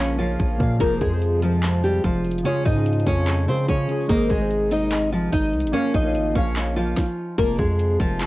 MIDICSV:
0, 0, Header, 1, 6, 480
1, 0, Start_track
1, 0, Key_signature, -4, "minor"
1, 0, Tempo, 410959
1, 943, Time_signature, 4, 2, 24, 8
1, 9652, End_track
2, 0, Start_track
2, 0, Title_t, "Synth keys"
2, 0, Program_c, 0, 88
2, 0, Control_c, 0, 64, 127
2, 0, Note_on_c, 0, 58, 80
2, 0, Note_on_c, 0, 70, 70
2, 0, Note_on_c, 0, 73, 72
2, 0, Note_on_c, 0, 77, 86
2, 195, Note_off_c, 0, 58, 0
2, 195, Note_on_c, 0, 58, 67
2, 212, Note_off_c, 0, 70, 0
2, 212, Note_on_c, 0, 70, 63
2, 229, Note_off_c, 0, 73, 0
2, 229, Note_on_c, 0, 73, 58
2, 245, Note_off_c, 0, 77, 0
2, 245, Note_on_c, 0, 77, 78
2, 527, Note_off_c, 0, 58, 0
2, 535, Note_off_c, 0, 70, 0
2, 544, Note_off_c, 0, 73, 0
2, 552, Note_off_c, 0, 77, 0
2, 675, Note_on_c, 0, 58, 82
2, 693, Note_on_c, 0, 70, 70
2, 710, Note_on_c, 0, 73, 69
2, 727, Note_on_c, 0, 77, 95
2, 848, Note_off_c, 0, 58, 0
2, 857, Note_off_c, 0, 70, 0
2, 865, Note_off_c, 0, 73, 0
2, 874, Note_off_c, 0, 77, 0
2, 918, Note_on_c, 0, 53, 107
2, 935, Note_on_c, 0, 65, 86
2, 951, Note_on_c, 0, 68, 91
2, 956, Control_c, 0, 64, 0
2, 968, Note_on_c, 0, 72, 108
2, 1169, Note_off_c, 0, 53, 0
2, 1174, Control_c, 0, 64, 127
2, 1177, Note_off_c, 0, 65, 0
2, 1186, Note_off_c, 0, 68, 0
2, 1194, Note_off_c, 0, 72, 0
2, 1275, Note_on_c, 0, 53, 76
2, 1292, Note_on_c, 0, 65, 64
2, 1309, Note_on_c, 0, 68, 70
2, 1326, Note_on_c, 0, 72, 90
2, 1528, Note_off_c, 0, 53, 0
2, 1536, Note_off_c, 0, 65, 0
2, 1544, Note_off_c, 0, 68, 0
2, 1553, Note_off_c, 0, 72, 0
2, 1635, Note_on_c, 0, 53, 76
2, 1652, Note_on_c, 0, 65, 69
2, 1668, Note_on_c, 0, 68, 71
2, 1686, Note_on_c, 0, 72, 84
2, 2285, Note_off_c, 0, 53, 0
2, 2294, Note_off_c, 0, 65, 0
2, 2302, Note_off_c, 0, 68, 0
2, 2311, Note_off_c, 0, 72, 0
2, 2839, Note_on_c, 0, 49, 96
2, 2855, Note_on_c, 0, 61, 92
2, 2873, Note_on_c, 0, 65, 92
2, 2878, Control_c, 0, 64, 0
2, 2889, Note_on_c, 0, 68, 111
2, 3089, Note_off_c, 0, 49, 0
2, 3098, Note_off_c, 0, 61, 0
2, 3106, Note_off_c, 0, 65, 0
2, 3107, Control_c, 0, 64, 127
2, 3114, Note_off_c, 0, 68, 0
2, 3197, Note_on_c, 0, 49, 75
2, 3214, Note_on_c, 0, 61, 67
2, 3231, Note_on_c, 0, 65, 68
2, 3248, Note_on_c, 0, 68, 80
2, 3448, Note_off_c, 0, 49, 0
2, 3457, Note_off_c, 0, 61, 0
2, 3465, Note_off_c, 0, 65, 0
2, 3474, Note_off_c, 0, 68, 0
2, 3559, Note_on_c, 0, 49, 73
2, 3575, Note_on_c, 0, 61, 77
2, 3592, Note_on_c, 0, 65, 69
2, 3610, Note_on_c, 0, 68, 88
2, 3889, Note_off_c, 0, 49, 0
2, 3897, Note_off_c, 0, 61, 0
2, 3905, Note_off_c, 0, 65, 0
2, 3914, Note_off_c, 0, 68, 0
2, 4037, Note_on_c, 0, 49, 70
2, 4054, Note_on_c, 0, 61, 62
2, 4072, Note_on_c, 0, 65, 65
2, 4088, Note_on_c, 0, 68, 80
2, 4368, Note_off_c, 0, 49, 0
2, 4377, Note_off_c, 0, 61, 0
2, 4385, Note_off_c, 0, 65, 0
2, 4394, Note_off_c, 0, 68, 0
2, 4519, Note_on_c, 0, 49, 84
2, 4536, Note_on_c, 0, 61, 70
2, 4554, Note_on_c, 0, 65, 67
2, 4570, Note_on_c, 0, 68, 91
2, 4690, Note_off_c, 0, 49, 0
2, 4698, Note_off_c, 0, 61, 0
2, 4707, Note_off_c, 0, 65, 0
2, 4715, Note_off_c, 0, 68, 0
2, 4758, Note_on_c, 0, 56, 97
2, 4775, Note_on_c, 0, 68, 95
2, 4793, Note_on_c, 0, 72, 88
2, 4799, Control_c, 0, 64, 0
2, 4810, Note_on_c, 0, 75, 111
2, 5009, Note_off_c, 0, 56, 0
2, 5017, Note_off_c, 0, 68, 0
2, 5026, Note_off_c, 0, 72, 0
2, 5028, Control_c, 0, 64, 127
2, 5035, Note_off_c, 0, 75, 0
2, 5117, Note_on_c, 0, 56, 72
2, 5135, Note_on_c, 0, 68, 64
2, 5152, Note_on_c, 0, 72, 64
2, 5169, Note_on_c, 0, 75, 81
2, 5369, Note_off_c, 0, 56, 0
2, 5377, Note_off_c, 0, 68, 0
2, 5386, Note_off_c, 0, 72, 0
2, 5394, Note_off_c, 0, 75, 0
2, 5480, Note_on_c, 0, 56, 69
2, 5497, Note_on_c, 0, 68, 71
2, 5514, Note_on_c, 0, 72, 71
2, 5531, Note_on_c, 0, 75, 78
2, 6128, Note_off_c, 0, 56, 0
2, 6136, Note_off_c, 0, 68, 0
2, 6145, Note_off_c, 0, 72, 0
2, 6153, Note_off_c, 0, 75, 0
2, 6679, Note_on_c, 0, 58, 103
2, 6696, Note_on_c, 0, 70, 100
2, 6712, Note_on_c, 0, 73, 96
2, 6719, Control_c, 0, 64, 0
2, 6729, Note_on_c, 0, 77, 104
2, 6929, Note_off_c, 0, 58, 0
2, 6938, Note_off_c, 0, 70, 0
2, 6946, Note_off_c, 0, 73, 0
2, 6955, Note_off_c, 0, 77, 0
2, 6955, Control_c, 0, 64, 127
2, 7038, Note_on_c, 0, 58, 76
2, 7055, Note_on_c, 0, 70, 64
2, 7072, Note_on_c, 0, 73, 66
2, 7089, Note_on_c, 0, 77, 75
2, 7289, Note_off_c, 0, 58, 0
2, 7298, Note_off_c, 0, 70, 0
2, 7306, Note_off_c, 0, 73, 0
2, 7314, Note_off_c, 0, 77, 0
2, 7398, Note_on_c, 0, 58, 79
2, 7415, Note_on_c, 0, 70, 74
2, 7431, Note_on_c, 0, 73, 76
2, 7449, Note_on_c, 0, 77, 84
2, 7728, Note_off_c, 0, 58, 0
2, 7737, Note_off_c, 0, 70, 0
2, 7745, Note_off_c, 0, 73, 0
2, 7754, Note_off_c, 0, 77, 0
2, 7877, Note_on_c, 0, 58, 67
2, 7894, Note_on_c, 0, 70, 64
2, 7911, Note_on_c, 0, 73, 60
2, 7928, Note_on_c, 0, 77, 81
2, 8155, Control_c, 0, 64, 0
2, 8208, Note_off_c, 0, 58, 0
2, 8217, Note_off_c, 0, 70, 0
2, 8225, Note_off_c, 0, 73, 0
2, 8234, Note_off_c, 0, 77, 0
2, 9652, End_track
3, 0, Start_track
3, 0, Title_t, "Nylon-string guitar"
3, 0, Program_c, 1, 24
3, 0, Note_on_c, 1, 61, 86
3, 0, Note_on_c, 1, 73, 62
3, 192, Note_off_c, 1, 61, 0
3, 196, Note_off_c, 1, 73, 0
3, 217, Note_on_c, 1, 65, 79
3, 228, Note_on_c, 1, 53, 61
3, 896, Note_off_c, 1, 65, 0
3, 902, Note_off_c, 1, 53, 0
3, 935, Note_on_c, 1, 70, 105
3, 946, Note_on_c, 1, 58, 77
3, 1148, Note_off_c, 1, 70, 0
3, 1154, Note_off_c, 1, 58, 0
3, 1180, Note_on_c, 1, 68, 76
3, 1189, Note_on_c, 1, 56, 60
3, 1633, Note_off_c, 1, 68, 0
3, 1637, Note_off_c, 1, 56, 0
3, 1662, Note_on_c, 1, 65, 81
3, 1672, Note_on_c, 1, 53, 64
3, 2113, Note_off_c, 1, 65, 0
3, 2118, Note_off_c, 1, 53, 0
3, 2146, Note_on_c, 1, 67, 76
3, 2156, Note_on_c, 1, 55, 66
3, 2354, Note_off_c, 1, 67, 0
3, 2359, Note_off_c, 1, 55, 0
3, 2385, Note_on_c, 1, 65, 81
3, 2396, Note_on_c, 1, 53, 65
3, 2835, Note_off_c, 1, 65, 0
3, 2841, Note_off_c, 1, 53, 0
3, 2864, Note_on_c, 1, 61, 99
3, 2873, Note_on_c, 1, 73, 73
3, 3073, Note_off_c, 1, 61, 0
3, 3078, Note_off_c, 1, 73, 0
3, 3098, Note_on_c, 1, 63, 82
3, 3106, Note_on_c, 1, 75, 63
3, 3551, Note_off_c, 1, 63, 0
3, 3556, Note_off_c, 1, 75, 0
3, 3587, Note_on_c, 1, 61, 85
3, 3596, Note_on_c, 1, 73, 66
3, 4036, Note_off_c, 1, 61, 0
3, 4041, Note_off_c, 1, 73, 0
3, 4067, Note_on_c, 1, 60, 76
3, 4078, Note_on_c, 1, 72, 62
3, 4274, Note_off_c, 1, 60, 0
3, 4280, Note_off_c, 1, 72, 0
3, 4304, Note_on_c, 1, 61, 87
3, 4315, Note_on_c, 1, 73, 61
3, 4755, Note_off_c, 1, 61, 0
3, 4760, Note_off_c, 1, 73, 0
3, 4779, Note_on_c, 1, 70, 101
3, 4787, Note_on_c, 1, 58, 83
3, 4989, Note_off_c, 1, 70, 0
3, 4994, Note_off_c, 1, 58, 0
3, 5024, Note_on_c, 1, 68, 77
3, 5033, Note_on_c, 1, 56, 66
3, 5475, Note_off_c, 1, 68, 0
3, 5480, Note_off_c, 1, 56, 0
3, 5506, Note_on_c, 1, 63, 80
3, 5515, Note_on_c, 1, 75, 63
3, 5955, Note_off_c, 1, 63, 0
3, 5960, Note_off_c, 1, 75, 0
3, 5984, Note_on_c, 1, 65, 78
3, 5994, Note_on_c, 1, 53, 62
3, 6193, Note_off_c, 1, 65, 0
3, 6198, Note_off_c, 1, 53, 0
3, 6219, Note_on_c, 1, 63, 83
3, 6227, Note_on_c, 1, 75, 62
3, 6672, Note_off_c, 1, 63, 0
3, 6676, Note_off_c, 1, 75, 0
3, 6694, Note_on_c, 1, 61, 108
3, 6705, Note_on_c, 1, 73, 80
3, 6907, Note_off_c, 1, 61, 0
3, 6913, Note_off_c, 1, 73, 0
3, 6939, Note_on_c, 1, 63, 88
3, 6948, Note_on_c, 1, 75, 69
3, 7392, Note_off_c, 1, 63, 0
3, 7396, Note_off_c, 1, 75, 0
3, 7419, Note_on_c, 1, 61, 82
3, 7429, Note_on_c, 1, 73, 62
3, 7872, Note_off_c, 1, 61, 0
3, 7877, Note_off_c, 1, 73, 0
3, 7900, Note_on_c, 1, 65, 79
3, 7908, Note_on_c, 1, 53, 59
3, 8578, Note_off_c, 1, 65, 0
3, 8582, Note_off_c, 1, 53, 0
3, 8620, Note_on_c, 1, 70, 108
3, 8630, Note_on_c, 1, 58, 85
3, 8830, Note_off_c, 1, 70, 0
3, 8836, Note_off_c, 1, 58, 0
3, 8862, Note_on_c, 1, 68, 78
3, 8871, Note_on_c, 1, 56, 62
3, 9314, Note_off_c, 1, 68, 0
3, 9318, Note_off_c, 1, 56, 0
3, 9344, Note_on_c, 1, 65, 83
3, 9353, Note_on_c, 1, 53, 66
3, 9652, Note_off_c, 1, 53, 0
3, 9652, Note_off_c, 1, 65, 0
3, 9652, End_track
4, 0, Start_track
4, 0, Title_t, "Harmonium"
4, 0, Program_c, 2, 20
4, 0, Note_on_c, 2, 49, 80
4, 0, Note_on_c, 2, 53, 73
4, 0, Note_on_c, 2, 58, 73
4, 0, Note_on_c, 2, 65, 90
4, 922, Note_off_c, 2, 65, 0
4, 923, Note_off_c, 2, 49, 0
4, 923, Note_off_c, 2, 53, 0
4, 923, Note_off_c, 2, 58, 0
4, 944, Note_on_c, 2, 48, 76
4, 944, Note_on_c, 2, 56, 73
4, 945, Note_on_c, 2, 53, 73
4, 945, Note_on_c, 2, 65, 88
4, 2844, Note_off_c, 2, 48, 0
4, 2844, Note_off_c, 2, 53, 0
4, 2861, Note_on_c, 2, 49, 80
4, 2862, Note_on_c, 2, 53, 72
4, 4745, Note_off_c, 2, 65, 0
4, 4763, Note_off_c, 2, 49, 0
4, 4763, Note_off_c, 2, 53, 0
4, 4784, Note_on_c, 2, 51, 73
4, 4785, Note_on_c, 2, 48, 77
4, 4785, Note_on_c, 2, 63, 85
4, 6657, Note_off_c, 2, 56, 0
4, 6684, Note_off_c, 2, 48, 0
4, 6684, Note_off_c, 2, 51, 0
4, 6684, Note_off_c, 2, 63, 0
4, 6704, Note_on_c, 2, 58, 70
4, 6704, Note_on_c, 2, 65, 82
4, 6705, Note_on_c, 2, 49, 78
4, 6705, Note_on_c, 2, 53, 68
4, 8129, Note_off_c, 2, 49, 0
4, 8129, Note_off_c, 2, 58, 0
4, 8129, Note_off_c, 2, 65, 0
4, 8130, Note_off_c, 2, 53, 0
4, 8622, Note_on_c, 2, 56, 75
4, 8623, Note_on_c, 2, 48, 80
4, 8623, Note_on_c, 2, 53, 71
4, 8623, Note_on_c, 2, 65, 91
4, 9652, Note_off_c, 2, 48, 0
4, 9652, Note_off_c, 2, 53, 0
4, 9652, Note_off_c, 2, 56, 0
4, 9652, Note_off_c, 2, 65, 0
4, 9652, End_track
5, 0, Start_track
5, 0, Title_t, "808-style bass"
5, 0, Program_c, 3, 38
5, 0, Note_on_c, 3, 34, 106
5, 433, Note_off_c, 3, 34, 0
5, 463, Note_on_c, 3, 34, 107
5, 693, Note_off_c, 3, 34, 0
5, 701, Note_on_c, 3, 46, 106
5, 932, Note_off_c, 3, 46, 0
5, 942, Note_on_c, 3, 29, 113
5, 1173, Note_off_c, 3, 29, 0
5, 1183, Note_on_c, 3, 41, 100
5, 2336, Note_off_c, 3, 41, 0
5, 2383, Note_on_c, 3, 29, 107
5, 2844, Note_off_c, 3, 29, 0
5, 3103, Note_on_c, 3, 44, 98
5, 3563, Note_off_c, 3, 44, 0
5, 3582, Note_on_c, 3, 41, 107
5, 4062, Note_on_c, 3, 49, 103
5, 4080, Note_off_c, 3, 41, 0
5, 4290, Note_off_c, 3, 49, 0
5, 4304, Note_on_c, 3, 49, 106
5, 4533, Note_off_c, 3, 49, 0
5, 4783, Note_on_c, 3, 32, 109
5, 5013, Note_off_c, 3, 32, 0
5, 5024, Note_on_c, 3, 32, 101
5, 6176, Note_off_c, 3, 32, 0
5, 6225, Note_on_c, 3, 32, 109
5, 6463, Note_on_c, 3, 36, 101
5, 6481, Note_off_c, 3, 32, 0
5, 6584, Note_on_c, 3, 32, 100
5, 6602, Note_off_c, 3, 36, 0
5, 6697, Note_off_c, 3, 32, 0
5, 6944, Note_on_c, 3, 34, 107
5, 7184, Note_on_c, 3, 32, 105
5, 7201, Note_off_c, 3, 34, 0
5, 7411, Note_off_c, 3, 32, 0
5, 7422, Note_on_c, 3, 34, 104
5, 8114, Note_off_c, 3, 34, 0
5, 8623, Note_on_c, 3, 29, 115
5, 8853, Note_off_c, 3, 29, 0
5, 8864, Note_on_c, 3, 41, 102
5, 9324, Note_off_c, 3, 41, 0
5, 9342, Note_on_c, 3, 29, 105
5, 9652, Note_off_c, 3, 29, 0
5, 9652, End_track
6, 0, Start_track
6, 0, Title_t, "Drums"
6, 463, Note_on_c, 9, 36, 94
6, 463, Note_on_c, 9, 42, 71
6, 579, Note_off_c, 9, 42, 0
6, 580, Note_off_c, 9, 36, 0
6, 701, Note_on_c, 9, 36, 99
6, 701, Note_on_c, 9, 42, 76
6, 818, Note_off_c, 9, 36, 0
6, 818, Note_off_c, 9, 42, 0
6, 941, Note_on_c, 9, 42, 77
6, 942, Note_on_c, 9, 36, 126
6, 1058, Note_off_c, 9, 42, 0
6, 1059, Note_off_c, 9, 36, 0
6, 1179, Note_on_c, 9, 42, 69
6, 1183, Note_on_c, 9, 36, 98
6, 1296, Note_off_c, 9, 42, 0
6, 1299, Note_off_c, 9, 36, 0
6, 1421, Note_on_c, 9, 42, 82
6, 1538, Note_off_c, 9, 42, 0
6, 1661, Note_on_c, 9, 42, 74
6, 1778, Note_off_c, 9, 42, 0
6, 1901, Note_on_c, 9, 42, 89
6, 1902, Note_on_c, 9, 39, 111
6, 2018, Note_off_c, 9, 42, 0
6, 2019, Note_off_c, 9, 39, 0
6, 2382, Note_on_c, 9, 42, 69
6, 2383, Note_on_c, 9, 36, 100
6, 2499, Note_off_c, 9, 42, 0
6, 2500, Note_off_c, 9, 36, 0
6, 2622, Note_on_c, 9, 42, 47
6, 2701, Note_off_c, 9, 42, 0
6, 2701, Note_on_c, 9, 42, 62
6, 2782, Note_off_c, 9, 42, 0
6, 2782, Note_on_c, 9, 42, 84
6, 2861, Note_off_c, 9, 42, 0
6, 2861, Note_on_c, 9, 42, 77
6, 2978, Note_off_c, 9, 42, 0
6, 3098, Note_on_c, 9, 42, 69
6, 3102, Note_on_c, 9, 36, 95
6, 3215, Note_off_c, 9, 42, 0
6, 3219, Note_off_c, 9, 36, 0
6, 3342, Note_on_c, 9, 42, 83
6, 3422, Note_off_c, 9, 42, 0
6, 3422, Note_on_c, 9, 42, 63
6, 3502, Note_off_c, 9, 42, 0
6, 3502, Note_on_c, 9, 42, 48
6, 3581, Note_off_c, 9, 42, 0
6, 3581, Note_on_c, 9, 42, 78
6, 3582, Note_on_c, 9, 36, 107
6, 3698, Note_off_c, 9, 36, 0
6, 3698, Note_off_c, 9, 42, 0
6, 3821, Note_on_c, 9, 42, 92
6, 3822, Note_on_c, 9, 39, 109
6, 3938, Note_off_c, 9, 42, 0
6, 3939, Note_off_c, 9, 39, 0
6, 4303, Note_on_c, 9, 42, 68
6, 4304, Note_on_c, 9, 36, 97
6, 4420, Note_off_c, 9, 42, 0
6, 4421, Note_off_c, 9, 36, 0
6, 4543, Note_on_c, 9, 42, 74
6, 4660, Note_off_c, 9, 42, 0
6, 4783, Note_on_c, 9, 36, 124
6, 4783, Note_on_c, 9, 42, 78
6, 4900, Note_off_c, 9, 36, 0
6, 4900, Note_off_c, 9, 42, 0
6, 5020, Note_on_c, 9, 42, 71
6, 5024, Note_on_c, 9, 36, 100
6, 5137, Note_off_c, 9, 42, 0
6, 5140, Note_off_c, 9, 36, 0
6, 5264, Note_on_c, 9, 42, 78
6, 5381, Note_off_c, 9, 42, 0
6, 5503, Note_on_c, 9, 42, 77
6, 5619, Note_off_c, 9, 42, 0
6, 5742, Note_on_c, 9, 42, 90
6, 5744, Note_on_c, 9, 39, 111
6, 5859, Note_off_c, 9, 42, 0
6, 5860, Note_off_c, 9, 39, 0
6, 6224, Note_on_c, 9, 42, 68
6, 6225, Note_on_c, 9, 36, 99
6, 6341, Note_off_c, 9, 36, 0
6, 6341, Note_off_c, 9, 42, 0
6, 6464, Note_on_c, 9, 42, 49
6, 6544, Note_off_c, 9, 42, 0
6, 6544, Note_on_c, 9, 42, 63
6, 6623, Note_off_c, 9, 42, 0
6, 6623, Note_on_c, 9, 42, 86
6, 6704, Note_off_c, 9, 42, 0
6, 6704, Note_on_c, 9, 42, 75
6, 6820, Note_off_c, 9, 42, 0
6, 6941, Note_on_c, 9, 42, 73
6, 6944, Note_on_c, 9, 36, 96
6, 7058, Note_off_c, 9, 42, 0
6, 7061, Note_off_c, 9, 36, 0
6, 7183, Note_on_c, 9, 42, 80
6, 7300, Note_off_c, 9, 42, 0
6, 7422, Note_on_c, 9, 36, 110
6, 7422, Note_on_c, 9, 42, 75
6, 7539, Note_off_c, 9, 36, 0
6, 7539, Note_off_c, 9, 42, 0
6, 7661, Note_on_c, 9, 42, 89
6, 7663, Note_on_c, 9, 39, 116
6, 7778, Note_off_c, 9, 42, 0
6, 7780, Note_off_c, 9, 39, 0
6, 8142, Note_on_c, 9, 38, 91
6, 8143, Note_on_c, 9, 36, 109
6, 8259, Note_off_c, 9, 38, 0
6, 8260, Note_off_c, 9, 36, 0
6, 8622, Note_on_c, 9, 42, 81
6, 8623, Note_on_c, 9, 36, 125
6, 8739, Note_off_c, 9, 42, 0
6, 8740, Note_off_c, 9, 36, 0
6, 8860, Note_on_c, 9, 42, 74
6, 8863, Note_on_c, 9, 36, 103
6, 8977, Note_off_c, 9, 42, 0
6, 8980, Note_off_c, 9, 36, 0
6, 9103, Note_on_c, 9, 42, 85
6, 9220, Note_off_c, 9, 42, 0
6, 9342, Note_on_c, 9, 36, 116
6, 9342, Note_on_c, 9, 42, 81
6, 9459, Note_off_c, 9, 36, 0
6, 9459, Note_off_c, 9, 42, 0
6, 9582, Note_on_c, 9, 42, 93
6, 9584, Note_on_c, 9, 39, 115
6, 9652, Note_off_c, 9, 39, 0
6, 9652, Note_off_c, 9, 42, 0
6, 9652, End_track
0, 0, End_of_file